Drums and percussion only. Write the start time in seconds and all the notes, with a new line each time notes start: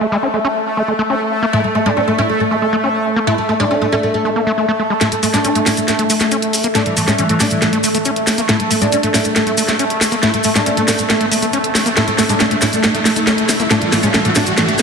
5.01 snare, closed hi-hat, maracas
5.12 closed hi-hat
5.23 open hi-hat, maracas
5.34 snare, closed hi-hat, maracas
5.44 closed hi-hat, maracas
5.55 closed hi-hat
5.66 snare, open hi-hat, maracas
5.77 closed hi-hat, maracas
5.88 snare, closed hi-hat, maracas
5.99 closed hi-hat
6.10 open hi-hat, maracas
6.20 snare, closed hi-hat, maracas
6.31 closed hi-hat, maracas
6.42 closed hi-hat
6.53 open hi-hat, maracas
6.64 closed hi-hat, maracas
6.75 snare, closed hi-hat, maracas
6.86 closed hi-hat
6.97 open hi-hat, maracas
7.08 snare, closed hi-hat, maracas
7.18 closed hi-hat, maracas
7.29 closed hi-hat
7.40 snare, open hi-hat, maracas
7.50 closed hi-hat, maracas
7.62 snare, closed hi-hat, maracas
7.73 closed hi-hat
7.84 open hi-hat, maracas
7.94 closed hi-hat, maracas
8.05 closed hi-hat, maracas
8.16 closed hi-hat
8.27 snare, open hi-hat, maracas
8.38 closed hi-hat, maracas
8.49 snare, closed hi-hat, maracas
8.60 closed hi-hat
8.71 open hi-hat, maracas
8.81 closed hi-hat, maracas
8.92 closed hi-hat, maracas
9.03 closed hi-hat
9.14 snare, open hi-hat, maracas
9.25 closed hi-hat, maracas
9.36 snare, closed hi-hat, maracas
9.47 closed hi-hat
9.58 open hi-hat, maracas
9.68 snare, closed hi-hat, maracas
9.79 closed hi-hat, maracas
9.90 closed hi-hat
10.01 snare, open hi-hat, maracas
10.12 closed hi-hat, maracas
10.23 snare, closed hi-hat, maracas
10.34 closed hi-hat
10.44 open hi-hat, maracas
10.55 snare, closed hi-hat, maracas
10.66 closed hi-hat, maracas
10.77 closed hi-hat
10.88 snare, open hi-hat, maracas
10.98 closed hi-hat, maracas
11.10 snare, closed hi-hat, maracas
11.21 closed hi-hat
11.32 open hi-hat, maracas
11.42 closed hi-hat, maracas
11.53 closed hi-hat, maracas
11.64 closed hi-hat
11.75 snare, open hi-hat, maracas
11.86 closed hi-hat, maracas
11.97 snare, closed hi-hat, maracas
12.08 closed hi-hat
12.18 snare, open hi-hat, maracas
12.29 closed hi-hat, maracas
12.40 snare, closed hi-hat, maracas
12.51 closed hi-hat
12.61 snare, open hi-hat, maracas
12.73 closed hi-hat, maracas
12.83 snare, closed hi-hat, maracas
12.95 closed hi-hat
13.05 snare, open hi-hat, maracas
13.16 closed hi-hat, maracas
13.27 snare, closed hi-hat, maracas
13.38 closed hi-hat
13.49 snare, open hi-hat, maracas
13.60 closed hi-hat, maracas
13.70 snare, closed hi-hat, maracas
13.82 closed hi-hat
13.92 snare, open hi-hat, maracas
14.03 closed hi-hat, maracas
14.14 snare, closed hi-hat, maracas
14.25 closed hi-hat
14.35 snare, open hi-hat, maracas
14.46 closed hi-hat, maracas
14.57 snare, closed hi-hat, maracas
14.68 closed hi-hat
14.78 maracas